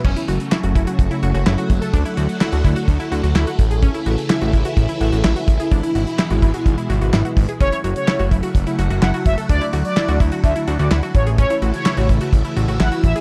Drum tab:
CC |x---------------|----------------|----------------|----------------|
HH |-xxx-xxxxxxx-xxx|xxxx-xxxxxxx-xxx|xxxx-xxxxxxx-xxx|xxxx-xxxxxxx-xox|
CP |----x-------x---|----x-------x---|----x-------x---|----x-------x---|
SD |----o-------o---|----o-------o---|----o-------o---|----o-------o---|
BD |o-----o-o-----o-|o-----o-o-----o-|o-----o-o-----o-|o-----o-o-----o-|

CC |----------------|----------------|----------------|
HH |xxxx-xxxxxxx-xxx|xxxx-xxxxxxx-xxx|xxxx-xxxxxxx-xxx|
CP |----x-------x---|----x-------x---|----x-------x---|
SD |----o-------o---|----o-------o---|----o-------o---|
BD |o-----o-o-----o-|o-----o-o-----o-|o-----o-o-----o-|